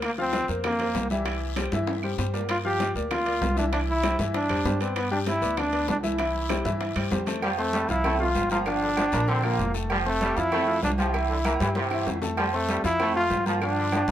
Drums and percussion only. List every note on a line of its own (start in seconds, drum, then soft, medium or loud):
0.02 high bongo medium
0.02 high conga soft
0.02 high timbale medium
0.02 long guiro medium
0.02 claves medium
0.18 high conga soft
0.33 high bongo medium
0.33 high conga medium
0.33 high timbale medium
0.33 low timbale medium
0.33 short guiro medium
0.48 high conga soft
0.48 short guiro medium
0.64 high bongo medium
0.64 high conga soft
0.64 low conga medium
0.64 high timbale medium
0.64 long guiro medium
0.64 claves medium
0.79 high conga soft
0.79 low conga medium
0.79 high timbale medium
0.95 high bongo medium
0.95 low bongo medium
0.95 high conga medium
0.95 low timbale medium
0.95 short guiro medium
1.10 high conga medium
1.10 short guiro medium
1.25 high bongo medium
1.25 high conga soft
1.25 high timbale medium
1.25 long guiro medium
1.25 claves medium
1.41 high bongo soft
1.41 high conga soft
1.56 high bongo medium
1.56 high conga loud
1.56 high timbale medium
1.56 low timbale medium
1.56 short guiro medium
1.56 claves medium
1.72 high bongo soft
1.72 high conga loud
1.72 short guiro medium
1.87 high bongo medium
1.87 high conga soft
1.87 high timbale medium
1.87 long guiro medium
2.03 high bongo soft
2.03 high conga soft
2.03 claves medium
2.18 high bongo medium
2.18 low bongo medium
2.18 high conga soft
2.18 short guiro medium
2.34 high conga soft
2.34 low timbale medium
2.34 short guiro medium
2.49 high bongo medium
2.49 high conga soft
2.49 high timbale loud
2.49 long guiro medium
2.49 claves medium
2.65 high conga soft
2.80 high bongo medium
2.80 high conga medium
2.80 high timbale medium
2.80 low timbale medium
2.80 short guiro medium
2.95 high conga soft
2.95 short guiro medium
3.11 high bongo medium
3.11 high conga soft
3.11 low conga medium
3.11 high timbale medium
3.11 long guiro medium
3.11 claves medium
3.26 high conga soft
3.26 high timbale medium
3.41 high bongo medium
3.41 low bongo medium
3.41 high conga medium
3.41 low timbale medium
3.41 short guiro medium
3.57 high conga medium
3.57 short guiro medium
3.73 high bongo medium
3.73 high timbale medium
3.73 long guiro medium
3.73 claves medium
3.88 high bongo soft
3.88 high conga soft
4.03 high bongo medium
4.03 high conga medium
4.03 high timbale loud
4.03 low timbale medium
4.03 short guiro medium
4.03 claves medium
4.19 high conga medium
4.19 short guiro medium
4.34 high bongo medium
4.34 high conga soft
4.34 high timbale medium
4.34 long guiro medium
4.49 high bongo soft
4.49 high conga soft
4.49 high timbale loud
4.49 claves medium
4.65 high bongo medium
4.65 low bongo medium
4.65 high conga soft
4.65 low timbale medium
4.65 short guiro medium
4.81 high conga soft
4.81 high timbale medium
4.81 short guiro medium
4.96 high bongo medium
4.96 high conga soft
4.96 high timbale loud
4.96 long guiro medium
4.96 claves medium
5.11 high conga soft
5.26 high bongo medium
5.26 high conga medium
5.26 high timbale medium
5.26 low timbale medium
5.26 short guiro medium
5.42 high conga soft
5.42 short guiro medium
5.57 high bongo medium
5.57 high conga soft
5.57 low conga medium
5.57 high timbale medium
5.57 long guiro medium
5.57 claves medium
5.72 high conga soft
5.72 high timbale medium
5.88 high bongo medium
5.88 low bongo medium
5.88 high conga medium
5.88 low timbale medium
5.88 short guiro medium
6.03 high conga medium
6.03 short guiro medium
6.18 high bongo medium
6.18 high conga soft
6.18 high timbale medium
6.18 long guiro medium
6.18 claves medium
6.34 high bongo soft
6.34 high conga soft
6.49 high bongo medium
6.49 high conga medium
6.49 high timbale medium
6.49 low timbale medium
6.49 short guiro medium
6.49 claves medium
6.65 high bongo soft
6.65 high conga loud
6.65 short guiro medium
6.80 high bongo medium
6.80 high conga soft
6.80 high timbale medium
6.80 long guiro medium
6.96 high bongo soft
6.96 high conga medium
6.96 high timbale loud
6.96 claves medium
7.11 high bongo medium
7.11 low bongo medium
7.11 high conga medium
7.11 low timbale medium
7.11 short guiro medium
7.26 low conga medium
7.26 high timbale medium
7.26 short guiro medium
7.42 cowbell loud
7.42 high conga soft
7.42 low agogo loud
7.42 long guiro medium
7.42 claves medium
7.58 cowbell medium
7.58 high conga soft
7.73 cowbell medium
7.73 high conga medium
7.73 low timbale medium
7.73 low agogo medium
7.73 short guiro medium
7.88 cowbell medium
7.88 high conga soft
7.88 short guiro medium
8.04 cowbell loud
8.04 high conga soft
8.04 low conga medium
8.04 low agogo loud
8.04 long guiro medium
8.04 claves medium
8.20 high conga soft
8.20 low conga medium
8.35 cowbell medium
8.35 high conga medium
8.35 low timbale medium
8.35 low agogo medium
8.35 short guiro medium
8.50 high conga medium
8.50 low agogo medium
8.50 short guiro medium
8.66 cowbell loud
8.66 high conga soft
8.66 low agogo loud
8.66 long guiro medium
8.66 claves medium
8.82 high conga soft
8.97 cowbell medium
8.97 high conga loud
8.97 low timbale medium
8.97 low agogo loud
8.97 short guiro medium
8.97 claves medium
9.12 high conga loud
9.12 short guiro medium
9.28 cowbell loud
9.28 high conga soft
9.28 low agogo medium
9.28 long guiro medium
9.43 high conga soft
9.43 low agogo loud
9.43 claves medium
9.58 cowbell medium
9.58 high conga soft
9.58 low timbale medium
9.58 short guiro medium
9.74 high conga soft
9.74 short guiro medium
9.90 cowbell loud
9.90 high conga soft
9.90 low agogo loud
9.90 long guiro medium
9.90 claves medium
10.05 cowbell medium
10.05 high conga soft
10.21 cowbell medium
10.21 high conga loud
10.21 low timbale medium
10.21 low agogo medium
10.21 short guiro medium
10.36 cowbell medium
10.36 high conga soft
10.36 short guiro medium
10.52 cowbell loud
10.52 high conga soft
10.52 low conga medium
10.52 low agogo loud
10.52 long guiro medium
10.52 claves medium
10.67 high conga soft
10.82 cowbell medium
10.82 high conga medium
10.82 low timbale medium
10.82 low agogo medium
10.82 short guiro medium
10.98 high conga medium
10.98 low agogo medium
10.98 short guiro medium
11.14 cowbell loud
11.14 high conga soft
11.14 low agogo loud
11.14 long guiro medium
11.14 claves medium
11.29 high conga soft
11.45 cowbell medium
11.45 high conga loud
11.45 low timbale medium
11.45 low agogo loud
11.45 short guiro medium
11.45 claves medium
11.60 high conga loud
11.60 short guiro medium
11.75 cowbell loud
11.75 high conga medium
11.75 low agogo medium
11.75 long guiro medium
11.91 low agogo loud
11.91 claves medium
12.06 cowbell medium
12.06 low conga medium
12.06 low timbale medium
12.06 short guiro medium
12.22 low conga loud
12.22 short guiro medium
12.37 cowbell loud
12.37 high conga soft
12.37 low agogo loud
12.37 long guiro medium
12.37 claves medium
12.53 cowbell medium
12.53 high conga soft
12.68 cowbell medium
12.68 high conga medium
12.68 low timbale medium
12.68 low agogo medium
12.68 short guiro medium
12.84 cowbell medium
12.84 high conga soft
12.84 short guiro medium
13.00 cowbell loud
13.00 high conga soft
13.00 low conga medium
13.00 low agogo loud
13.00 long guiro medium
13.00 claves medium
13.15 high conga soft
13.30 cowbell medium
13.30 high conga medium
13.30 low timbale medium
13.30 low agogo medium
13.30 short guiro medium
13.46 high conga medium
13.46 low agogo medium
13.46 short guiro medium
13.62 cowbell loud
13.62 low agogo loud
13.62 long guiro medium
13.62 claves medium
13.77 high conga soft
13.92 cowbell medium
13.92 high conga loud
13.92 low timbale medium
13.92 low agogo loud
13.92 short guiro medium
13.92 claves medium
14.08 high conga loud
14.08 short guiro medium